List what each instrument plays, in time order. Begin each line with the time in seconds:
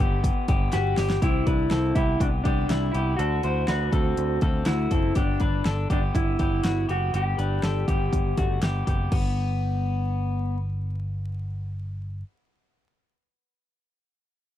Already playing: clean electric guitar G4
0.00 picked electric bass G1, clean electric guitar B3 G4
0.24 kick, closed hi-hat
0.48 picked electric bass G1, clean electric guitar B3 G4, kick, closed hi-hat
0.72 picked electric bass G1, clean electric guitar B3 F#4 G4, snare, closed hi-hat
0.97 picked electric bass G1, clean electric guitar B3 G4, snare, open hi-hat
1.10 snare
1.22 picked electric bass C2, clean electric guitar C4 E4 G4, kick, closed hi-hat
1.47 picked electric bass C2, clean electric guitar D4 B4, kick, closed hi-hat
1.71 picked electric bass C2, clean electric guitar C4 A4, snare, closed hi-hat
1.95 picked electric bass C2, clean electric guitar B3 E4 G4, kick, closed hi-hat
2.20 picked electric bass C2, clean electric guitar D4, kick, closed hi-hat
2.44 picked electric bass C2, clean electric guitar B3 D4 G4, kick, closed hi-hat
2.69 picked electric bass C2, clean electric guitar G3 E4, snare, closed hi-hat
2.92 picked electric bass C2, clean electric guitar B3 E4 G4, closed hi-hat
3.17 picked electric bass D2, clean electric guitar D4 F#4 A4, closed hi-hat
3.43 picked electric bass D2, clean electric guitar E4 C5, closed hi-hat
3.67 picked electric bass D2, clean electric guitar D4 F#4 B4, snare, closed hi-hat
3.92 picked electric bass D2, clean electric guitar C4 A4, kick, closed hi-hat
4.17 picked electric bass D2, closed hi-hat
4.41 picked electric bass D2, clean electric guitar C4 A4, kick, closed hi-hat
4.65 picked electric bass D2, clean electric guitar A3 E4 F#4, snare, closed hi-hat
4.91 picked electric bass F#1, clean electric guitar C4 A4, kick, closed hi-hat
5.15 picked electric bass G1, clean electric guitar B3 D4 G4, kick, closed hi-hat
5.40 picked electric bass G1, clean electric guitar D4 B4, kick, closed hi-hat
5.65 picked electric bass G1, clean electric guitar D4 A4, snare, closed hi-hat
5.90 picked electric bass G1, clean electric guitar B3 D4 G4, kick, closed hi-hat
6.15 picked electric bass G1, clean electric guitar E4, kick, closed hi-hat
6.39 picked electric bass G1, clean electric guitar B3 G4, kick, closed hi-hat
6.64 picked electric bass G1, clean electric guitar B3 F#4, snare, closed hi-hat
6.89 picked electric bass F#1, clean electric guitar B3 F#4 G4, closed hi-hat
7.14 picked electric bass G1, clean electric guitar B3 G4, closed hi-hat
7.38 picked electric bass G1, clean electric guitar D4 B4, closed hi-hat
7.63 picked electric bass G1, clean electric guitar D4 A4, snare, closed hi-hat
7.88 picked electric bass G1, clean electric guitar B3 G4, kick, closed hi-hat
8.12 picked electric bass G1, kick, closed hi-hat
8.38 picked electric bass G1, clean electric guitar A3 F#4, kick, closed hi-hat
8.62 picked electric bass G1, clean electric guitar B3 G4, snare, closed hi-hat
8.87 picked electric bass F#1, clean electric guitar B3 G4, kick, closed hi-hat
9.12 picked electric bass G1, clean electric guitar B3, kick, crash